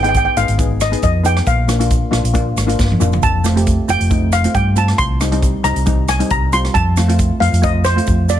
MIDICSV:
0, 0, Header, 1, 5, 480
1, 0, Start_track
1, 0, Tempo, 440205
1, 1599, Time_signature, 4, 2, 24, 8
1, 9157, End_track
2, 0, Start_track
2, 0, Title_t, "Steel pan"
2, 0, Program_c, 0, 114
2, 31, Note_on_c, 0, 79, 74
2, 80, Note_off_c, 0, 79, 0
2, 93, Note_on_c, 0, 79, 69
2, 174, Note_off_c, 0, 79, 0
2, 186, Note_on_c, 0, 79, 75
2, 259, Note_off_c, 0, 79, 0
2, 272, Note_on_c, 0, 79, 72
2, 347, Note_off_c, 0, 79, 0
2, 405, Note_on_c, 0, 77, 84
2, 892, Note_on_c, 0, 75, 69
2, 896, Note_off_c, 0, 77, 0
2, 1115, Note_off_c, 0, 75, 0
2, 1128, Note_on_c, 0, 75, 72
2, 1370, Note_off_c, 0, 75, 0
2, 1371, Note_on_c, 0, 79, 79
2, 1607, Note_on_c, 0, 77, 73
2, 1612, Note_off_c, 0, 79, 0
2, 3237, Note_off_c, 0, 77, 0
2, 3523, Note_on_c, 0, 81, 87
2, 4196, Note_off_c, 0, 81, 0
2, 4255, Note_on_c, 0, 79, 92
2, 4721, Note_on_c, 0, 77, 76
2, 4740, Note_off_c, 0, 79, 0
2, 4959, Note_on_c, 0, 79, 83
2, 4966, Note_off_c, 0, 77, 0
2, 5205, Note_off_c, 0, 79, 0
2, 5211, Note_on_c, 0, 81, 81
2, 5434, Note_on_c, 0, 84, 100
2, 5451, Note_off_c, 0, 81, 0
2, 6151, Note_on_c, 0, 82, 95
2, 6178, Note_off_c, 0, 84, 0
2, 6641, Note_on_c, 0, 80, 82
2, 6649, Note_off_c, 0, 82, 0
2, 6882, Note_on_c, 0, 82, 91
2, 6887, Note_off_c, 0, 80, 0
2, 7121, Note_on_c, 0, 84, 91
2, 7128, Note_off_c, 0, 82, 0
2, 7351, Note_on_c, 0, 81, 88
2, 7368, Note_off_c, 0, 84, 0
2, 8072, Note_on_c, 0, 77, 79
2, 8098, Note_off_c, 0, 81, 0
2, 8324, Note_off_c, 0, 77, 0
2, 8328, Note_on_c, 0, 75, 84
2, 8555, Note_on_c, 0, 72, 79
2, 8572, Note_off_c, 0, 75, 0
2, 9047, Note_on_c, 0, 74, 71
2, 9054, Note_off_c, 0, 72, 0
2, 9123, Note_off_c, 0, 74, 0
2, 9157, End_track
3, 0, Start_track
3, 0, Title_t, "Steel pan"
3, 0, Program_c, 1, 114
3, 40, Note_on_c, 1, 59, 67
3, 47, Note_on_c, 1, 63, 68
3, 55, Note_on_c, 1, 68, 81
3, 258, Note_off_c, 1, 59, 0
3, 262, Note_off_c, 1, 63, 0
3, 266, Note_off_c, 1, 68, 0
3, 400, Note_on_c, 1, 59, 66
3, 407, Note_on_c, 1, 63, 56
3, 409, Note_on_c, 1, 68, 69
3, 549, Note_off_c, 1, 59, 0
3, 553, Note_off_c, 1, 63, 0
3, 554, Note_off_c, 1, 68, 0
3, 635, Note_on_c, 1, 59, 65
3, 643, Note_on_c, 1, 63, 56
3, 649, Note_on_c, 1, 68, 71
3, 854, Note_off_c, 1, 59, 0
3, 858, Note_off_c, 1, 63, 0
3, 861, Note_off_c, 1, 68, 0
3, 997, Note_on_c, 1, 59, 65
3, 1002, Note_on_c, 1, 63, 60
3, 1009, Note_on_c, 1, 68, 78
3, 1216, Note_off_c, 1, 59, 0
3, 1218, Note_off_c, 1, 63, 0
3, 1222, Note_off_c, 1, 68, 0
3, 1349, Note_on_c, 1, 59, 60
3, 1357, Note_on_c, 1, 63, 58
3, 1367, Note_on_c, 1, 68, 60
3, 1593, Note_off_c, 1, 59, 0
3, 1598, Note_off_c, 1, 63, 0
3, 1602, Note_off_c, 1, 68, 0
3, 1829, Note_on_c, 1, 58, 63
3, 1834, Note_on_c, 1, 62, 55
3, 1841, Note_on_c, 1, 65, 64
3, 1909, Note_off_c, 1, 58, 0
3, 1912, Note_off_c, 1, 62, 0
3, 1915, Note_off_c, 1, 65, 0
3, 1956, Note_on_c, 1, 58, 72
3, 1963, Note_on_c, 1, 62, 64
3, 1967, Note_on_c, 1, 65, 74
3, 2175, Note_off_c, 1, 58, 0
3, 2178, Note_off_c, 1, 62, 0
3, 2180, Note_off_c, 1, 65, 0
3, 2298, Note_on_c, 1, 58, 65
3, 2303, Note_on_c, 1, 62, 70
3, 2310, Note_on_c, 1, 65, 77
3, 2457, Note_off_c, 1, 58, 0
3, 2459, Note_off_c, 1, 62, 0
3, 2463, Note_off_c, 1, 65, 0
3, 2547, Note_on_c, 1, 58, 81
3, 2551, Note_on_c, 1, 62, 74
3, 2561, Note_on_c, 1, 65, 80
3, 2769, Note_off_c, 1, 58, 0
3, 2771, Note_off_c, 1, 62, 0
3, 2776, Note_off_c, 1, 65, 0
3, 2906, Note_on_c, 1, 58, 74
3, 2913, Note_on_c, 1, 62, 69
3, 2920, Note_on_c, 1, 65, 82
3, 3129, Note_off_c, 1, 58, 0
3, 3133, Note_off_c, 1, 62, 0
3, 3136, Note_off_c, 1, 65, 0
3, 3269, Note_on_c, 1, 58, 68
3, 3275, Note_on_c, 1, 62, 68
3, 3281, Note_on_c, 1, 65, 76
3, 3512, Note_off_c, 1, 58, 0
3, 3516, Note_off_c, 1, 62, 0
3, 3519, Note_off_c, 1, 65, 0
3, 3752, Note_on_c, 1, 57, 66
3, 3760, Note_on_c, 1, 60, 59
3, 3765, Note_on_c, 1, 65, 63
3, 3830, Note_off_c, 1, 57, 0
3, 3834, Note_off_c, 1, 60, 0
3, 3836, Note_off_c, 1, 65, 0
3, 3878, Note_on_c, 1, 57, 72
3, 3885, Note_on_c, 1, 60, 62
3, 3891, Note_on_c, 1, 67, 77
3, 4095, Note_off_c, 1, 57, 0
3, 4098, Note_off_c, 1, 60, 0
3, 4101, Note_off_c, 1, 67, 0
3, 4231, Note_on_c, 1, 57, 66
3, 4241, Note_on_c, 1, 60, 54
3, 4243, Note_on_c, 1, 65, 69
3, 4383, Note_off_c, 1, 57, 0
3, 4388, Note_off_c, 1, 60, 0
3, 4389, Note_off_c, 1, 65, 0
3, 4469, Note_on_c, 1, 57, 66
3, 4474, Note_on_c, 1, 60, 58
3, 4481, Note_on_c, 1, 63, 68
3, 4690, Note_off_c, 1, 57, 0
3, 4692, Note_off_c, 1, 60, 0
3, 4696, Note_off_c, 1, 63, 0
3, 4843, Note_on_c, 1, 57, 66
3, 4849, Note_on_c, 1, 60, 58
3, 4855, Note_on_c, 1, 65, 68
3, 5058, Note_off_c, 1, 57, 0
3, 5061, Note_off_c, 1, 60, 0
3, 5064, Note_off_c, 1, 65, 0
3, 5187, Note_on_c, 1, 57, 57
3, 5194, Note_on_c, 1, 60, 58
3, 5202, Note_on_c, 1, 65, 64
3, 5432, Note_off_c, 1, 57, 0
3, 5435, Note_off_c, 1, 60, 0
3, 5439, Note_off_c, 1, 65, 0
3, 5675, Note_on_c, 1, 55, 62
3, 5678, Note_on_c, 1, 60, 57
3, 5688, Note_on_c, 1, 63, 66
3, 5752, Note_off_c, 1, 55, 0
3, 5753, Note_off_c, 1, 60, 0
3, 5759, Note_off_c, 1, 63, 0
3, 5796, Note_on_c, 1, 55, 67
3, 5804, Note_on_c, 1, 60, 65
3, 5808, Note_on_c, 1, 63, 78
3, 6015, Note_off_c, 1, 55, 0
3, 6019, Note_off_c, 1, 60, 0
3, 6021, Note_off_c, 1, 63, 0
3, 6144, Note_on_c, 1, 55, 60
3, 6152, Note_on_c, 1, 60, 59
3, 6159, Note_on_c, 1, 63, 72
3, 6300, Note_off_c, 1, 55, 0
3, 6304, Note_off_c, 1, 60, 0
3, 6307, Note_off_c, 1, 63, 0
3, 6390, Note_on_c, 1, 55, 68
3, 6394, Note_on_c, 1, 60, 61
3, 6400, Note_on_c, 1, 63, 71
3, 6611, Note_off_c, 1, 55, 0
3, 6613, Note_off_c, 1, 60, 0
3, 6616, Note_off_c, 1, 63, 0
3, 6754, Note_on_c, 1, 55, 71
3, 6759, Note_on_c, 1, 60, 67
3, 6763, Note_on_c, 1, 63, 75
3, 6975, Note_off_c, 1, 55, 0
3, 6977, Note_off_c, 1, 60, 0
3, 6979, Note_off_c, 1, 63, 0
3, 7114, Note_on_c, 1, 55, 62
3, 7120, Note_on_c, 1, 60, 64
3, 7127, Note_on_c, 1, 65, 73
3, 7357, Note_off_c, 1, 55, 0
3, 7360, Note_off_c, 1, 60, 0
3, 7364, Note_off_c, 1, 65, 0
3, 7602, Note_on_c, 1, 57, 59
3, 7604, Note_on_c, 1, 60, 52
3, 7615, Note_on_c, 1, 65, 67
3, 7677, Note_off_c, 1, 57, 0
3, 7678, Note_off_c, 1, 60, 0
3, 7683, Note_off_c, 1, 65, 0
3, 7721, Note_on_c, 1, 57, 67
3, 7723, Note_on_c, 1, 60, 64
3, 7734, Note_on_c, 1, 65, 77
3, 7939, Note_off_c, 1, 57, 0
3, 7940, Note_off_c, 1, 60, 0
3, 7945, Note_off_c, 1, 65, 0
3, 8069, Note_on_c, 1, 57, 64
3, 8074, Note_on_c, 1, 60, 55
3, 8079, Note_on_c, 1, 65, 67
3, 8224, Note_off_c, 1, 57, 0
3, 8227, Note_off_c, 1, 60, 0
3, 8229, Note_off_c, 1, 65, 0
3, 8306, Note_on_c, 1, 57, 69
3, 8311, Note_on_c, 1, 60, 61
3, 8317, Note_on_c, 1, 65, 72
3, 8531, Note_off_c, 1, 57, 0
3, 8534, Note_off_c, 1, 60, 0
3, 8537, Note_off_c, 1, 65, 0
3, 8681, Note_on_c, 1, 57, 72
3, 8690, Note_on_c, 1, 60, 62
3, 8694, Note_on_c, 1, 65, 74
3, 8899, Note_off_c, 1, 57, 0
3, 8904, Note_off_c, 1, 60, 0
3, 8906, Note_off_c, 1, 65, 0
3, 9038, Note_on_c, 1, 57, 62
3, 9041, Note_on_c, 1, 60, 52
3, 9048, Note_on_c, 1, 65, 61
3, 9157, Note_off_c, 1, 57, 0
3, 9157, Note_off_c, 1, 60, 0
3, 9157, Note_off_c, 1, 65, 0
3, 9157, End_track
4, 0, Start_track
4, 0, Title_t, "Fingered electric bass"
4, 0, Program_c, 2, 33
4, 0, Note_on_c, 2, 32, 93
4, 278, Note_off_c, 2, 32, 0
4, 396, Note_on_c, 2, 32, 74
4, 503, Note_off_c, 2, 32, 0
4, 525, Note_on_c, 2, 32, 84
4, 1017, Note_off_c, 2, 32, 0
4, 1120, Note_on_c, 2, 41, 74
4, 1517, Note_off_c, 2, 41, 0
4, 1601, Note_on_c, 2, 34, 100
4, 2196, Note_off_c, 2, 34, 0
4, 2312, Note_on_c, 2, 34, 80
4, 2419, Note_off_c, 2, 34, 0
4, 2438, Note_on_c, 2, 34, 85
4, 2733, Note_off_c, 2, 34, 0
4, 2794, Note_on_c, 2, 32, 66
4, 3011, Note_off_c, 2, 32, 0
4, 3040, Note_on_c, 2, 31, 68
4, 3254, Note_off_c, 2, 31, 0
4, 3273, Note_on_c, 2, 29, 82
4, 3491, Note_off_c, 2, 29, 0
4, 3524, Note_on_c, 2, 29, 86
4, 4118, Note_off_c, 2, 29, 0
4, 4235, Note_on_c, 2, 29, 77
4, 4340, Note_off_c, 2, 29, 0
4, 4361, Note_on_c, 2, 29, 86
4, 4854, Note_off_c, 2, 29, 0
4, 4957, Note_on_c, 2, 43, 80
4, 5355, Note_off_c, 2, 43, 0
4, 5440, Note_on_c, 2, 36, 94
4, 6036, Note_off_c, 2, 36, 0
4, 6153, Note_on_c, 2, 36, 85
4, 6260, Note_off_c, 2, 36, 0
4, 6276, Note_on_c, 2, 36, 84
4, 6772, Note_off_c, 2, 36, 0
4, 6877, Note_on_c, 2, 36, 78
4, 7276, Note_off_c, 2, 36, 0
4, 7356, Note_on_c, 2, 41, 100
4, 7956, Note_off_c, 2, 41, 0
4, 8075, Note_on_c, 2, 41, 77
4, 8182, Note_off_c, 2, 41, 0
4, 8202, Note_on_c, 2, 41, 88
4, 8697, Note_off_c, 2, 41, 0
4, 8806, Note_on_c, 2, 41, 74
4, 9157, Note_off_c, 2, 41, 0
4, 9157, End_track
5, 0, Start_track
5, 0, Title_t, "Drums"
5, 46, Note_on_c, 9, 42, 50
5, 155, Note_off_c, 9, 42, 0
5, 158, Note_on_c, 9, 42, 55
5, 161, Note_on_c, 9, 36, 77
5, 170, Note_on_c, 9, 82, 66
5, 267, Note_off_c, 9, 42, 0
5, 270, Note_off_c, 9, 36, 0
5, 279, Note_off_c, 9, 82, 0
5, 400, Note_on_c, 9, 42, 75
5, 406, Note_on_c, 9, 82, 90
5, 509, Note_off_c, 9, 42, 0
5, 515, Note_off_c, 9, 82, 0
5, 524, Note_on_c, 9, 42, 55
5, 535, Note_on_c, 9, 82, 25
5, 633, Note_off_c, 9, 42, 0
5, 642, Note_on_c, 9, 36, 101
5, 642, Note_on_c, 9, 42, 57
5, 644, Note_off_c, 9, 82, 0
5, 645, Note_on_c, 9, 82, 58
5, 751, Note_off_c, 9, 36, 0
5, 751, Note_off_c, 9, 42, 0
5, 754, Note_off_c, 9, 82, 0
5, 879, Note_on_c, 9, 82, 83
5, 885, Note_on_c, 9, 37, 81
5, 885, Note_on_c, 9, 42, 79
5, 988, Note_off_c, 9, 82, 0
5, 994, Note_off_c, 9, 37, 0
5, 994, Note_off_c, 9, 42, 0
5, 1013, Note_on_c, 9, 42, 63
5, 1117, Note_on_c, 9, 82, 53
5, 1122, Note_off_c, 9, 42, 0
5, 1122, Note_on_c, 9, 36, 72
5, 1124, Note_on_c, 9, 42, 50
5, 1226, Note_off_c, 9, 82, 0
5, 1231, Note_off_c, 9, 36, 0
5, 1233, Note_off_c, 9, 42, 0
5, 1363, Note_on_c, 9, 82, 75
5, 1365, Note_on_c, 9, 42, 65
5, 1472, Note_off_c, 9, 82, 0
5, 1474, Note_off_c, 9, 42, 0
5, 1490, Note_on_c, 9, 37, 64
5, 1490, Note_on_c, 9, 42, 47
5, 1599, Note_on_c, 9, 82, 54
5, 1600, Note_off_c, 9, 37, 0
5, 1600, Note_off_c, 9, 42, 0
5, 1600, Note_on_c, 9, 36, 90
5, 1603, Note_on_c, 9, 42, 52
5, 1708, Note_off_c, 9, 82, 0
5, 1709, Note_off_c, 9, 36, 0
5, 1712, Note_off_c, 9, 42, 0
5, 1840, Note_on_c, 9, 37, 71
5, 1840, Note_on_c, 9, 42, 68
5, 1840, Note_on_c, 9, 82, 71
5, 1949, Note_off_c, 9, 37, 0
5, 1949, Note_off_c, 9, 42, 0
5, 1950, Note_off_c, 9, 82, 0
5, 1969, Note_on_c, 9, 42, 57
5, 1973, Note_on_c, 9, 82, 21
5, 2078, Note_off_c, 9, 42, 0
5, 2078, Note_off_c, 9, 82, 0
5, 2078, Note_on_c, 9, 82, 59
5, 2079, Note_on_c, 9, 42, 62
5, 2081, Note_on_c, 9, 36, 80
5, 2187, Note_off_c, 9, 82, 0
5, 2188, Note_off_c, 9, 42, 0
5, 2190, Note_off_c, 9, 36, 0
5, 2323, Note_on_c, 9, 37, 68
5, 2323, Note_on_c, 9, 42, 81
5, 2432, Note_off_c, 9, 37, 0
5, 2432, Note_off_c, 9, 42, 0
5, 2447, Note_on_c, 9, 82, 23
5, 2452, Note_on_c, 9, 42, 58
5, 2556, Note_off_c, 9, 82, 0
5, 2556, Note_on_c, 9, 82, 55
5, 2561, Note_off_c, 9, 42, 0
5, 2562, Note_on_c, 9, 36, 93
5, 2565, Note_on_c, 9, 42, 55
5, 2665, Note_off_c, 9, 82, 0
5, 2671, Note_off_c, 9, 36, 0
5, 2674, Note_off_c, 9, 42, 0
5, 2803, Note_on_c, 9, 82, 85
5, 2811, Note_on_c, 9, 37, 75
5, 2811, Note_on_c, 9, 42, 69
5, 2912, Note_off_c, 9, 82, 0
5, 2920, Note_off_c, 9, 37, 0
5, 2920, Note_off_c, 9, 42, 0
5, 2929, Note_on_c, 9, 82, 25
5, 2937, Note_on_c, 9, 42, 53
5, 3039, Note_off_c, 9, 82, 0
5, 3043, Note_on_c, 9, 36, 74
5, 3043, Note_on_c, 9, 82, 60
5, 3044, Note_on_c, 9, 38, 50
5, 3046, Note_off_c, 9, 42, 0
5, 3152, Note_off_c, 9, 36, 0
5, 3152, Note_off_c, 9, 82, 0
5, 3153, Note_off_c, 9, 38, 0
5, 3181, Note_on_c, 9, 48, 52
5, 3280, Note_on_c, 9, 82, 86
5, 3287, Note_on_c, 9, 45, 59
5, 3290, Note_off_c, 9, 48, 0
5, 3389, Note_off_c, 9, 82, 0
5, 3396, Note_off_c, 9, 45, 0
5, 3404, Note_on_c, 9, 82, 27
5, 3417, Note_on_c, 9, 43, 72
5, 3513, Note_off_c, 9, 82, 0
5, 3517, Note_on_c, 9, 82, 60
5, 3524, Note_on_c, 9, 36, 87
5, 3526, Note_off_c, 9, 43, 0
5, 3527, Note_on_c, 9, 42, 51
5, 3626, Note_off_c, 9, 82, 0
5, 3633, Note_off_c, 9, 36, 0
5, 3636, Note_off_c, 9, 42, 0
5, 3757, Note_on_c, 9, 82, 88
5, 3774, Note_on_c, 9, 37, 71
5, 3774, Note_on_c, 9, 42, 71
5, 3866, Note_off_c, 9, 82, 0
5, 3883, Note_off_c, 9, 37, 0
5, 3883, Note_off_c, 9, 42, 0
5, 3894, Note_on_c, 9, 42, 55
5, 3997, Note_on_c, 9, 82, 68
5, 4002, Note_on_c, 9, 36, 72
5, 4003, Note_off_c, 9, 42, 0
5, 4003, Note_on_c, 9, 42, 58
5, 4106, Note_off_c, 9, 82, 0
5, 4111, Note_off_c, 9, 36, 0
5, 4112, Note_off_c, 9, 42, 0
5, 4240, Note_on_c, 9, 82, 91
5, 4245, Note_on_c, 9, 42, 67
5, 4349, Note_off_c, 9, 82, 0
5, 4354, Note_off_c, 9, 42, 0
5, 4366, Note_on_c, 9, 82, 25
5, 4369, Note_on_c, 9, 42, 55
5, 4475, Note_off_c, 9, 82, 0
5, 4476, Note_on_c, 9, 82, 59
5, 4478, Note_off_c, 9, 42, 0
5, 4480, Note_on_c, 9, 36, 98
5, 4482, Note_on_c, 9, 42, 57
5, 4585, Note_off_c, 9, 82, 0
5, 4589, Note_off_c, 9, 36, 0
5, 4591, Note_off_c, 9, 42, 0
5, 4715, Note_on_c, 9, 82, 86
5, 4718, Note_on_c, 9, 37, 73
5, 4718, Note_on_c, 9, 42, 70
5, 4824, Note_off_c, 9, 82, 0
5, 4827, Note_off_c, 9, 37, 0
5, 4827, Note_off_c, 9, 42, 0
5, 4843, Note_on_c, 9, 42, 60
5, 4952, Note_off_c, 9, 42, 0
5, 4956, Note_on_c, 9, 42, 57
5, 4957, Note_on_c, 9, 36, 78
5, 4962, Note_on_c, 9, 82, 64
5, 5065, Note_off_c, 9, 42, 0
5, 5066, Note_off_c, 9, 36, 0
5, 5071, Note_off_c, 9, 82, 0
5, 5193, Note_on_c, 9, 82, 80
5, 5194, Note_on_c, 9, 42, 60
5, 5302, Note_off_c, 9, 82, 0
5, 5303, Note_off_c, 9, 42, 0
5, 5324, Note_on_c, 9, 37, 68
5, 5324, Note_on_c, 9, 42, 52
5, 5433, Note_off_c, 9, 37, 0
5, 5433, Note_off_c, 9, 42, 0
5, 5435, Note_on_c, 9, 82, 65
5, 5438, Note_on_c, 9, 42, 61
5, 5439, Note_on_c, 9, 36, 94
5, 5544, Note_off_c, 9, 82, 0
5, 5547, Note_off_c, 9, 42, 0
5, 5548, Note_off_c, 9, 36, 0
5, 5678, Note_on_c, 9, 82, 86
5, 5679, Note_on_c, 9, 37, 78
5, 5679, Note_on_c, 9, 42, 74
5, 5787, Note_off_c, 9, 82, 0
5, 5788, Note_off_c, 9, 37, 0
5, 5788, Note_off_c, 9, 42, 0
5, 5802, Note_on_c, 9, 42, 59
5, 5911, Note_off_c, 9, 42, 0
5, 5915, Note_on_c, 9, 42, 59
5, 5916, Note_on_c, 9, 36, 81
5, 5921, Note_on_c, 9, 82, 64
5, 6024, Note_off_c, 9, 42, 0
5, 6025, Note_off_c, 9, 36, 0
5, 6030, Note_off_c, 9, 82, 0
5, 6152, Note_on_c, 9, 37, 74
5, 6152, Note_on_c, 9, 42, 79
5, 6158, Note_on_c, 9, 82, 92
5, 6261, Note_off_c, 9, 37, 0
5, 6261, Note_off_c, 9, 42, 0
5, 6267, Note_off_c, 9, 82, 0
5, 6281, Note_on_c, 9, 82, 25
5, 6282, Note_on_c, 9, 42, 61
5, 6390, Note_off_c, 9, 82, 0
5, 6390, Note_on_c, 9, 82, 65
5, 6391, Note_off_c, 9, 42, 0
5, 6395, Note_on_c, 9, 42, 61
5, 6398, Note_on_c, 9, 36, 107
5, 6499, Note_off_c, 9, 82, 0
5, 6504, Note_off_c, 9, 42, 0
5, 6507, Note_off_c, 9, 36, 0
5, 6632, Note_on_c, 9, 82, 93
5, 6636, Note_on_c, 9, 37, 79
5, 6636, Note_on_c, 9, 42, 78
5, 6741, Note_off_c, 9, 82, 0
5, 6745, Note_off_c, 9, 37, 0
5, 6745, Note_off_c, 9, 42, 0
5, 6763, Note_on_c, 9, 42, 56
5, 6872, Note_off_c, 9, 42, 0
5, 6872, Note_on_c, 9, 82, 55
5, 6873, Note_on_c, 9, 42, 52
5, 6877, Note_on_c, 9, 36, 71
5, 6981, Note_off_c, 9, 82, 0
5, 6982, Note_off_c, 9, 42, 0
5, 6986, Note_off_c, 9, 36, 0
5, 7118, Note_on_c, 9, 82, 77
5, 7120, Note_on_c, 9, 42, 65
5, 7227, Note_off_c, 9, 82, 0
5, 7229, Note_off_c, 9, 42, 0
5, 7248, Note_on_c, 9, 37, 62
5, 7248, Note_on_c, 9, 42, 52
5, 7357, Note_off_c, 9, 37, 0
5, 7357, Note_off_c, 9, 42, 0
5, 7358, Note_on_c, 9, 36, 90
5, 7359, Note_on_c, 9, 42, 53
5, 7360, Note_on_c, 9, 82, 62
5, 7468, Note_off_c, 9, 36, 0
5, 7468, Note_off_c, 9, 42, 0
5, 7469, Note_off_c, 9, 82, 0
5, 7596, Note_on_c, 9, 82, 91
5, 7605, Note_on_c, 9, 37, 72
5, 7605, Note_on_c, 9, 42, 74
5, 7705, Note_off_c, 9, 82, 0
5, 7714, Note_off_c, 9, 37, 0
5, 7714, Note_off_c, 9, 42, 0
5, 7735, Note_on_c, 9, 42, 56
5, 7838, Note_on_c, 9, 82, 73
5, 7842, Note_on_c, 9, 36, 82
5, 7844, Note_off_c, 9, 42, 0
5, 7844, Note_on_c, 9, 42, 53
5, 7947, Note_off_c, 9, 82, 0
5, 7951, Note_off_c, 9, 36, 0
5, 7953, Note_off_c, 9, 42, 0
5, 8090, Note_on_c, 9, 42, 72
5, 8199, Note_off_c, 9, 42, 0
5, 8205, Note_on_c, 9, 82, 24
5, 8219, Note_on_c, 9, 42, 56
5, 8314, Note_off_c, 9, 82, 0
5, 8317, Note_on_c, 9, 82, 66
5, 8326, Note_on_c, 9, 36, 104
5, 8328, Note_off_c, 9, 42, 0
5, 8331, Note_on_c, 9, 42, 59
5, 8426, Note_off_c, 9, 82, 0
5, 8435, Note_off_c, 9, 36, 0
5, 8440, Note_off_c, 9, 42, 0
5, 8553, Note_on_c, 9, 82, 89
5, 8571, Note_on_c, 9, 37, 80
5, 8571, Note_on_c, 9, 42, 74
5, 8662, Note_off_c, 9, 82, 0
5, 8680, Note_off_c, 9, 37, 0
5, 8680, Note_off_c, 9, 42, 0
5, 8702, Note_on_c, 9, 42, 59
5, 8793, Note_on_c, 9, 82, 61
5, 8807, Note_on_c, 9, 36, 76
5, 8811, Note_off_c, 9, 42, 0
5, 8816, Note_on_c, 9, 42, 47
5, 8902, Note_off_c, 9, 82, 0
5, 8916, Note_off_c, 9, 36, 0
5, 8925, Note_off_c, 9, 42, 0
5, 9042, Note_on_c, 9, 82, 92
5, 9053, Note_on_c, 9, 42, 65
5, 9151, Note_off_c, 9, 82, 0
5, 9157, Note_off_c, 9, 42, 0
5, 9157, End_track
0, 0, End_of_file